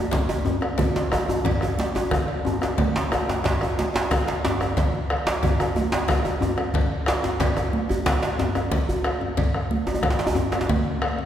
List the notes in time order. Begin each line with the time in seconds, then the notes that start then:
0.11 bombo low, djembe slap, high conga, low conga
0.29 cowbell, djembe tone
0.45 djembe tone, djembe bass
0.61 bombo rim, cowbell, djembe slap, djembe tone
0.78 bombo rim, bombo low, cowbell, djembe slap, djembe tone, high conga, low conga
0.95 djembe slap, high conga
1.12 bombo rim, cowbell, djembe tone
1.28 djembe tone, high conga
1.45 bombo low, cowbell, djembe slap, djembe bass, low conga
1.61 bombo rim, cowbell, djembe tone
1.78 djembe slap, high conga
1.95 bombo rim, cowbell, djembe tone, high conga
2.11 bombo rim, bombo low, djembe slap, high conga, djembe tone, low conga
2.28 cowbell
2.45 djembe tone, djembe bass
2.61 bombo rim, cowbell, djembe slap, djembe tone
2.63 djembe slap
2.78 bombo rim, bombo low, cowbell, djembe slap, high conga, low conga
2.95 djembe slap, high conga
3.12 bombo rim, cowbell, djembe tone
3.29 djembe slap, djembe tone, high conga
3.44 bombo low, cowbell, djembe slap, djembe bass, low conga
3.61 bombo rim, cowbell, djembe tone
3.78 djembe slap, high conga
3.94 bombo rim, cowbell, djembe slap, djembe tone, high conga
4.11 bombo rim, bombo low, djembe slap, high conga, djembe tone, low conga
4.28 cowbell, djembe slap
4.45 djembe slap, djembe bass
4.60 bombo rim, cowbell, djembe slap, djembe tone
4.77 bombo rim, bombo low, cowbell, djembe slap, low conga
4.94 djembe slap, high conga
5.10 bombo rim, cowbell
5.27 djembe slap, high conga
5.43 bombo low, cowbell, djembe slap, djembe tone, djembe bass, low conga
5.60 bombo rim, cowbell, djembe tone
5.76 bombo rim, high conga, djembe tone
5.92 bombo rim, cowbell, djembe slap, djembe tone
6.08 bombo rim, bombo low, djembe slap, djembe tone, low conga
6.25 cowbell, djembe tone
6.41 djembe tone, djembe bass
6.58 bombo rim, cowbell, high conga, djembe tone
6.74 bombo rim, bombo low, cowbell, djembe slap, low conga
6.91 djembe slap
7.06 bombo rim, cowbell, djembe slap
7.23 djembe slap, djembe tone, high conga
7.40 bombo low, cowbell, djembe slap, low conga, djembe bass
7.57 bombo rim, cowbell, djembe tone
7.73 djembe slap, high conga
7.89 bombo rim, cowbell, high conga, djembe tone, djembe bass
8.06 bombo rim, bombo low, djembe slap, high conga, low conga
8.22 cowbell, djembe slap
8.39 djembe slap, djembe bass
8.55 bombo rim, cowbell, djembe slap, djembe tone
8.71 bombo rim, bombo low, cowbell, djembe slap, high conga, low conga
8.88 djembe slap, high conga, djembe bass
9.04 bombo rim, cowbell
9.21 djembe tone, high conga
9.37 bombo low, cowbell, djembe slap, djembe bass, low conga
9.54 bombo rim
9.71 djembe slap, high conga
9.87 bombo rim, cowbell, djembe tone, high conga
9.94 djembe tone
10.03 bombo rim, bombo low, djembe slap, high conga, low conga
10.10 djembe slap
10.19 cowbell, djembe slap
10.27 djembe tone
10.35 djembe tone, djembe bass
10.52 bombo rim, cowbell, djembe slap, djembe tone
10.61 djembe slap
10.69 bombo rim, bombo low, cowbell, djembe slap, high conga, low conga
10.85 djembe slap, high conga
11.02 bombo rim, cowbell
11.19 djembe tone, high conga